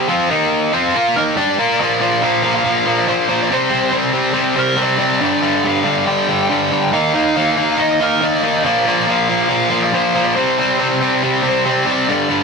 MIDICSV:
0, 0, Header, 1, 3, 480
1, 0, Start_track
1, 0, Tempo, 428571
1, 93, Time_signature, 4, 2, 24, 8
1, 13926, End_track
2, 0, Start_track
2, 0, Title_t, "Lead electric guitar"
2, 0, Program_c, 0, 29
2, 1302, Note_on_c, 0, 70, 82
2, 1365, Note_off_c, 0, 70, 0
2, 1536, Note_on_c, 0, 74, 99
2, 2006, Note_off_c, 0, 74, 0
2, 2019, Note_on_c, 0, 74, 98
2, 2486, Note_on_c, 0, 77, 113
2, 2509, Note_off_c, 0, 74, 0
2, 2838, Note_off_c, 0, 77, 0
2, 2852, Note_on_c, 0, 77, 105
2, 3340, Note_on_c, 0, 74, 104
2, 3345, Note_off_c, 0, 77, 0
2, 3451, Note_off_c, 0, 74, 0
2, 3456, Note_on_c, 0, 72, 99
2, 3823, Note_off_c, 0, 72, 0
2, 3836, Note_on_c, 0, 74, 91
2, 3959, Note_off_c, 0, 74, 0
2, 3959, Note_on_c, 0, 72, 88
2, 4424, Note_off_c, 0, 72, 0
2, 5140, Note_on_c, 0, 70, 82
2, 5357, Note_off_c, 0, 70, 0
2, 5402, Note_on_c, 0, 74, 100
2, 5609, Note_off_c, 0, 74, 0
2, 5623, Note_on_c, 0, 74, 86
2, 5839, Note_off_c, 0, 74, 0
2, 5880, Note_on_c, 0, 74, 105
2, 6338, Note_on_c, 0, 77, 103
2, 6357, Note_off_c, 0, 74, 0
2, 6700, Note_off_c, 0, 77, 0
2, 6713, Note_on_c, 0, 77, 103
2, 6790, Note_off_c, 0, 77, 0
2, 6794, Note_on_c, 0, 79, 110
2, 7273, Note_off_c, 0, 79, 0
2, 7286, Note_on_c, 0, 79, 104
2, 7754, Note_off_c, 0, 79, 0
2, 7759, Note_on_c, 0, 77, 110
2, 8733, Note_on_c, 0, 75, 115
2, 8751, Note_off_c, 0, 77, 0
2, 8976, Note_off_c, 0, 75, 0
2, 8992, Note_on_c, 0, 70, 81
2, 9223, Note_on_c, 0, 74, 96
2, 9226, Note_off_c, 0, 70, 0
2, 9685, Note_off_c, 0, 74, 0
2, 9698, Note_on_c, 0, 74, 95
2, 9939, Note_off_c, 0, 74, 0
2, 9956, Note_on_c, 0, 74, 84
2, 10188, Note_off_c, 0, 74, 0
2, 10197, Note_on_c, 0, 77, 88
2, 10540, Note_off_c, 0, 77, 0
2, 10554, Note_on_c, 0, 77, 95
2, 10988, Note_off_c, 0, 77, 0
2, 11016, Note_on_c, 0, 74, 98
2, 11136, Note_off_c, 0, 74, 0
2, 11136, Note_on_c, 0, 72, 91
2, 11473, Note_off_c, 0, 72, 0
2, 11477, Note_on_c, 0, 74, 89
2, 11581, Note_off_c, 0, 74, 0
2, 11585, Note_on_c, 0, 72, 89
2, 12043, Note_off_c, 0, 72, 0
2, 12865, Note_on_c, 0, 72, 82
2, 13083, Note_off_c, 0, 72, 0
2, 13100, Note_on_c, 0, 74, 92
2, 13321, Note_off_c, 0, 74, 0
2, 13352, Note_on_c, 0, 74, 94
2, 13561, Note_off_c, 0, 74, 0
2, 13574, Note_on_c, 0, 74, 103
2, 13926, Note_off_c, 0, 74, 0
2, 13926, End_track
3, 0, Start_track
3, 0, Title_t, "Overdriven electric guitar"
3, 0, Program_c, 1, 29
3, 95, Note_on_c, 1, 53, 100
3, 102, Note_on_c, 1, 60, 99
3, 109, Note_on_c, 1, 65, 103
3, 326, Note_off_c, 1, 53, 0
3, 330, Note_off_c, 1, 60, 0
3, 334, Note_off_c, 1, 65, 0
3, 336, Note_on_c, 1, 51, 90
3, 343, Note_on_c, 1, 58, 103
3, 347, Note_on_c, 1, 63, 114
3, 807, Note_off_c, 1, 51, 0
3, 811, Note_off_c, 1, 58, 0
3, 812, Note_off_c, 1, 63, 0
3, 816, Note_on_c, 1, 53, 83
3, 819, Note_on_c, 1, 60, 92
3, 828, Note_on_c, 1, 65, 93
3, 1047, Note_off_c, 1, 53, 0
3, 1048, Note_off_c, 1, 60, 0
3, 1053, Note_off_c, 1, 65, 0
3, 1066, Note_on_c, 1, 58, 99
3, 1073, Note_on_c, 1, 65, 95
3, 1075, Note_on_c, 1, 70, 102
3, 1292, Note_off_c, 1, 58, 0
3, 1296, Note_off_c, 1, 65, 0
3, 1297, Note_off_c, 1, 70, 0
3, 1298, Note_on_c, 1, 51, 96
3, 1307, Note_on_c, 1, 58, 104
3, 1314, Note_on_c, 1, 63, 91
3, 1526, Note_off_c, 1, 58, 0
3, 1528, Note_off_c, 1, 51, 0
3, 1528, Note_off_c, 1, 63, 0
3, 1531, Note_on_c, 1, 55, 81
3, 1532, Note_on_c, 1, 62, 80
3, 1535, Note_on_c, 1, 67, 85
3, 1764, Note_off_c, 1, 55, 0
3, 1765, Note_off_c, 1, 62, 0
3, 1766, Note_off_c, 1, 67, 0
3, 1782, Note_on_c, 1, 58, 98
3, 1786, Note_on_c, 1, 65, 100
3, 1787, Note_on_c, 1, 70, 115
3, 2010, Note_off_c, 1, 58, 0
3, 2011, Note_off_c, 1, 65, 0
3, 2012, Note_off_c, 1, 70, 0
3, 2020, Note_on_c, 1, 46, 98
3, 2026, Note_on_c, 1, 53, 110
3, 2032, Note_on_c, 1, 58, 98
3, 2237, Note_off_c, 1, 46, 0
3, 2244, Note_off_c, 1, 53, 0
3, 2249, Note_off_c, 1, 58, 0
3, 2250, Note_on_c, 1, 46, 91
3, 2257, Note_on_c, 1, 53, 92
3, 2263, Note_on_c, 1, 58, 90
3, 2477, Note_off_c, 1, 46, 0
3, 2480, Note_off_c, 1, 53, 0
3, 2488, Note_off_c, 1, 58, 0
3, 2491, Note_on_c, 1, 46, 94
3, 2493, Note_on_c, 1, 53, 89
3, 2501, Note_on_c, 1, 58, 93
3, 2708, Note_off_c, 1, 46, 0
3, 2716, Note_off_c, 1, 53, 0
3, 2721, Note_off_c, 1, 58, 0
3, 2722, Note_on_c, 1, 46, 85
3, 2729, Note_on_c, 1, 53, 81
3, 2734, Note_on_c, 1, 58, 82
3, 2951, Note_off_c, 1, 53, 0
3, 2951, Note_off_c, 1, 58, 0
3, 2952, Note_off_c, 1, 46, 0
3, 2964, Note_on_c, 1, 53, 111
3, 2964, Note_on_c, 1, 58, 117
3, 2965, Note_on_c, 1, 46, 106
3, 3190, Note_off_c, 1, 46, 0
3, 3190, Note_off_c, 1, 53, 0
3, 3197, Note_off_c, 1, 58, 0
3, 3203, Note_on_c, 1, 53, 91
3, 3204, Note_on_c, 1, 46, 94
3, 3211, Note_on_c, 1, 58, 92
3, 3421, Note_off_c, 1, 46, 0
3, 3431, Note_off_c, 1, 53, 0
3, 3433, Note_off_c, 1, 58, 0
3, 3435, Note_on_c, 1, 46, 88
3, 3444, Note_on_c, 1, 53, 91
3, 3446, Note_on_c, 1, 58, 101
3, 3665, Note_off_c, 1, 46, 0
3, 3671, Note_off_c, 1, 53, 0
3, 3679, Note_on_c, 1, 46, 75
3, 3680, Note_off_c, 1, 58, 0
3, 3685, Note_on_c, 1, 53, 85
3, 3694, Note_on_c, 1, 58, 90
3, 3909, Note_off_c, 1, 46, 0
3, 3913, Note_off_c, 1, 53, 0
3, 3917, Note_off_c, 1, 58, 0
3, 3929, Note_on_c, 1, 48, 99
3, 3932, Note_on_c, 1, 55, 93
3, 3940, Note_on_c, 1, 60, 105
3, 4135, Note_off_c, 1, 48, 0
3, 4145, Note_off_c, 1, 55, 0
3, 4145, Note_off_c, 1, 60, 0
3, 4149, Note_on_c, 1, 48, 92
3, 4149, Note_on_c, 1, 55, 90
3, 4158, Note_on_c, 1, 60, 97
3, 4383, Note_off_c, 1, 48, 0
3, 4391, Note_off_c, 1, 60, 0
3, 4393, Note_off_c, 1, 55, 0
3, 4396, Note_on_c, 1, 48, 91
3, 4397, Note_on_c, 1, 55, 88
3, 4404, Note_on_c, 1, 60, 91
3, 4607, Note_off_c, 1, 48, 0
3, 4616, Note_off_c, 1, 60, 0
3, 4621, Note_on_c, 1, 48, 67
3, 4624, Note_off_c, 1, 55, 0
3, 4629, Note_on_c, 1, 55, 78
3, 4630, Note_on_c, 1, 60, 88
3, 4841, Note_off_c, 1, 48, 0
3, 4845, Note_off_c, 1, 60, 0
3, 4854, Note_off_c, 1, 55, 0
3, 4854, Note_on_c, 1, 48, 107
3, 4859, Note_on_c, 1, 55, 106
3, 4859, Note_on_c, 1, 60, 106
3, 5087, Note_off_c, 1, 48, 0
3, 5093, Note_off_c, 1, 60, 0
3, 5096, Note_off_c, 1, 55, 0
3, 5100, Note_on_c, 1, 48, 90
3, 5100, Note_on_c, 1, 55, 87
3, 5107, Note_on_c, 1, 60, 102
3, 5326, Note_off_c, 1, 48, 0
3, 5333, Note_off_c, 1, 60, 0
3, 5336, Note_off_c, 1, 55, 0
3, 5339, Note_on_c, 1, 48, 93
3, 5341, Note_on_c, 1, 55, 91
3, 5346, Note_on_c, 1, 60, 98
3, 5565, Note_off_c, 1, 48, 0
3, 5575, Note_off_c, 1, 60, 0
3, 5579, Note_on_c, 1, 48, 77
3, 5581, Note_off_c, 1, 55, 0
3, 5585, Note_on_c, 1, 55, 82
3, 5588, Note_on_c, 1, 60, 86
3, 5818, Note_off_c, 1, 48, 0
3, 5823, Note_off_c, 1, 60, 0
3, 5827, Note_on_c, 1, 43, 105
3, 5830, Note_on_c, 1, 50, 103
3, 5833, Note_off_c, 1, 55, 0
3, 5837, Note_on_c, 1, 55, 109
3, 6055, Note_off_c, 1, 43, 0
3, 6057, Note_off_c, 1, 50, 0
3, 6067, Note_off_c, 1, 55, 0
3, 6068, Note_on_c, 1, 43, 96
3, 6071, Note_on_c, 1, 50, 86
3, 6072, Note_on_c, 1, 55, 102
3, 6303, Note_off_c, 1, 43, 0
3, 6309, Note_off_c, 1, 50, 0
3, 6316, Note_on_c, 1, 43, 104
3, 6323, Note_off_c, 1, 55, 0
3, 6323, Note_on_c, 1, 50, 84
3, 6328, Note_on_c, 1, 55, 101
3, 6525, Note_off_c, 1, 43, 0
3, 6539, Note_off_c, 1, 50, 0
3, 6539, Note_on_c, 1, 43, 79
3, 6545, Note_off_c, 1, 55, 0
3, 6549, Note_on_c, 1, 55, 100
3, 6552, Note_on_c, 1, 50, 69
3, 6777, Note_off_c, 1, 43, 0
3, 6779, Note_off_c, 1, 50, 0
3, 6790, Note_off_c, 1, 55, 0
3, 6790, Note_on_c, 1, 43, 103
3, 6792, Note_on_c, 1, 50, 124
3, 6803, Note_on_c, 1, 55, 113
3, 7019, Note_off_c, 1, 43, 0
3, 7028, Note_off_c, 1, 50, 0
3, 7032, Note_on_c, 1, 43, 76
3, 7036, Note_off_c, 1, 55, 0
3, 7042, Note_on_c, 1, 50, 91
3, 7049, Note_on_c, 1, 55, 90
3, 7260, Note_off_c, 1, 43, 0
3, 7265, Note_off_c, 1, 50, 0
3, 7270, Note_off_c, 1, 55, 0
3, 7274, Note_on_c, 1, 43, 91
3, 7279, Note_on_c, 1, 50, 96
3, 7283, Note_on_c, 1, 55, 90
3, 7504, Note_off_c, 1, 43, 0
3, 7506, Note_off_c, 1, 50, 0
3, 7509, Note_off_c, 1, 55, 0
3, 7517, Note_on_c, 1, 43, 92
3, 7520, Note_on_c, 1, 50, 95
3, 7522, Note_on_c, 1, 55, 92
3, 7747, Note_off_c, 1, 43, 0
3, 7749, Note_off_c, 1, 50, 0
3, 7750, Note_off_c, 1, 55, 0
3, 7754, Note_on_c, 1, 51, 106
3, 7763, Note_on_c, 1, 63, 108
3, 7764, Note_on_c, 1, 58, 109
3, 7984, Note_off_c, 1, 51, 0
3, 7996, Note_off_c, 1, 63, 0
3, 7997, Note_off_c, 1, 58, 0
3, 7998, Note_on_c, 1, 51, 87
3, 8002, Note_on_c, 1, 58, 87
3, 8009, Note_on_c, 1, 63, 105
3, 8232, Note_off_c, 1, 51, 0
3, 8242, Note_off_c, 1, 63, 0
3, 8243, Note_off_c, 1, 58, 0
3, 8246, Note_on_c, 1, 51, 83
3, 8247, Note_on_c, 1, 58, 104
3, 8256, Note_on_c, 1, 63, 100
3, 8462, Note_off_c, 1, 51, 0
3, 8472, Note_off_c, 1, 63, 0
3, 8475, Note_on_c, 1, 51, 65
3, 8476, Note_off_c, 1, 58, 0
3, 8480, Note_on_c, 1, 58, 93
3, 8486, Note_on_c, 1, 63, 96
3, 8696, Note_off_c, 1, 51, 0
3, 8696, Note_off_c, 1, 58, 0
3, 8701, Note_off_c, 1, 63, 0
3, 8709, Note_on_c, 1, 58, 101
3, 8710, Note_on_c, 1, 51, 99
3, 8714, Note_on_c, 1, 63, 111
3, 8950, Note_off_c, 1, 58, 0
3, 8951, Note_off_c, 1, 51, 0
3, 8954, Note_off_c, 1, 63, 0
3, 8963, Note_on_c, 1, 58, 100
3, 8965, Note_on_c, 1, 51, 82
3, 8967, Note_on_c, 1, 63, 95
3, 9181, Note_off_c, 1, 51, 0
3, 9187, Note_off_c, 1, 58, 0
3, 9192, Note_off_c, 1, 63, 0
3, 9195, Note_on_c, 1, 51, 87
3, 9201, Note_on_c, 1, 58, 96
3, 9205, Note_on_c, 1, 63, 101
3, 9426, Note_off_c, 1, 51, 0
3, 9431, Note_off_c, 1, 63, 0
3, 9435, Note_off_c, 1, 58, 0
3, 9439, Note_on_c, 1, 51, 83
3, 9445, Note_on_c, 1, 63, 95
3, 9449, Note_on_c, 1, 58, 92
3, 9668, Note_off_c, 1, 51, 0
3, 9671, Note_off_c, 1, 63, 0
3, 9673, Note_off_c, 1, 58, 0
3, 9674, Note_on_c, 1, 46, 90
3, 9679, Note_on_c, 1, 53, 104
3, 9687, Note_on_c, 1, 58, 111
3, 9908, Note_off_c, 1, 46, 0
3, 9912, Note_off_c, 1, 53, 0
3, 9916, Note_off_c, 1, 58, 0
3, 9921, Note_on_c, 1, 46, 94
3, 9925, Note_on_c, 1, 53, 89
3, 9930, Note_on_c, 1, 58, 97
3, 10147, Note_off_c, 1, 46, 0
3, 10151, Note_off_c, 1, 53, 0
3, 10156, Note_off_c, 1, 58, 0
3, 10160, Note_on_c, 1, 46, 85
3, 10164, Note_on_c, 1, 53, 93
3, 10170, Note_on_c, 1, 58, 103
3, 10393, Note_off_c, 1, 46, 0
3, 10397, Note_off_c, 1, 53, 0
3, 10398, Note_off_c, 1, 58, 0
3, 10406, Note_on_c, 1, 46, 82
3, 10410, Note_on_c, 1, 53, 78
3, 10412, Note_on_c, 1, 58, 89
3, 10621, Note_off_c, 1, 46, 0
3, 10624, Note_off_c, 1, 53, 0
3, 10633, Note_off_c, 1, 58, 0
3, 10634, Note_on_c, 1, 46, 115
3, 10637, Note_on_c, 1, 53, 100
3, 10647, Note_on_c, 1, 58, 99
3, 10855, Note_off_c, 1, 53, 0
3, 10856, Note_off_c, 1, 46, 0
3, 10865, Note_off_c, 1, 58, 0
3, 10868, Note_on_c, 1, 53, 99
3, 10869, Note_on_c, 1, 46, 90
3, 10879, Note_on_c, 1, 58, 95
3, 11107, Note_off_c, 1, 46, 0
3, 11111, Note_off_c, 1, 53, 0
3, 11113, Note_off_c, 1, 58, 0
3, 11121, Note_on_c, 1, 46, 92
3, 11125, Note_on_c, 1, 53, 99
3, 11126, Note_on_c, 1, 58, 105
3, 11351, Note_off_c, 1, 53, 0
3, 11352, Note_off_c, 1, 46, 0
3, 11353, Note_off_c, 1, 58, 0
3, 11364, Note_on_c, 1, 53, 91
3, 11366, Note_on_c, 1, 46, 93
3, 11366, Note_on_c, 1, 58, 91
3, 11592, Note_off_c, 1, 46, 0
3, 11592, Note_off_c, 1, 53, 0
3, 11593, Note_off_c, 1, 58, 0
3, 11610, Note_on_c, 1, 48, 106
3, 11615, Note_on_c, 1, 55, 117
3, 11621, Note_on_c, 1, 60, 101
3, 11843, Note_off_c, 1, 48, 0
3, 11850, Note_off_c, 1, 60, 0
3, 11854, Note_off_c, 1, 55, 0
3, 11857, Note_on_c, 1, 48, 88
3, 11858, Note_on_c, 1, 55, 82
3, 11864, Note_on_c, 1, 60, 108
3, 12082, Note_off_c, 1, 48, 0
3, 12089, Note_off_c, 1, 60, 0
3, 12095, Note_off_c, 1, 55, 0
3, 12095, Note_on_c, 1, 48, 86
3, 12100, Note_on_c, 1, 55, 101
3, 12102, Note_on_c, 1, 60, 110
3, 12321, Note_off_c, 1, 48, 0
3, 12331, Note_off_c, 1, 60, 0
3, 12333, Note_off_c, 1, 55, 0
3, 12335, Note_on_c, 1, 48, 86
3, 12337, Note_on_c, 1, 55, 95
3, 12344, Note_on_c, 1, 60, 95
3, 12561, Note_off_c, 1, 48, 0
3, 12570, Note_off_c, 1, 60, 0
3, 12574, Note_on_c, 1, 48, 108
3, 12576, Note_off_c, 1, 55, 0
3, 12580, Note_on_c, 1, 55, 110
3, 12583, Note_on_c, 1, 60, 107
3, 12788, Note_off_c, 1, 48, 0
3, 12798, Note_off_c, 1, 60, 0
3, 12801, Note_on_c, 1, 48, 80
3, 12811, Note_off_c, 1, 55, 0
3, 12811, Note_on_c, 1, 60, 102
3, 12815, Note_on_c, 1, 55, 94
3, 13037, Note_off_c, 1, 48, 0
3, 13044, Note_off_c, 1, 60, 0
3, 13049, Note_off_c, 1, 55, 0
3, 13050, Note_on_c, 1, 48, 84
3, 13053, Note_on_c, 1, 55, 87
3, 13058, Note_on_c, 1, 60, 105
3, 13265, Note_off_c, 1, 48, 0
3, 13277, Note_off_c, 1, 60, 0
3, 13278, Note_on_c, 1, 48, 87
3, 13284, Note_off_c, 1, 55, 0
3, 13288, Note_on_c, 1, 55, 94
3, 13290, Note_on_c, 1, 60, 98
3, 13509, Note_off_c, 1, 48, 0
3, 13515, Note_off_c, 1, 60, 0
3, 13532, Note_on_c, 1, 43, 114
3, 13538, Note_off_c, 1, 55, 0
3, 13539, Note_on_c, 1, 50, 112
3, 13542, Note_on_c, 1, 55, 109
3, 13751, Note_off_c, 1, 43, 0
3, 13759, Note_off_c, 1, 50, 0
3, 13761, Note_off_c, 1, 55, 0
3, 13765, Note_on_c, 1, 43, 94
3, 13773, Note_on_c, 1, 50, 100
3, 13774, Note_on_c, 1, 55, 90
3, 13926, Note_off_c, 1, 43, 0
3, 13926, Note_off_c, 1, 50, 0
3, 13926, Note_off_c, 1, 55, 0
3, 13926, End_track
0, 0, End_of_file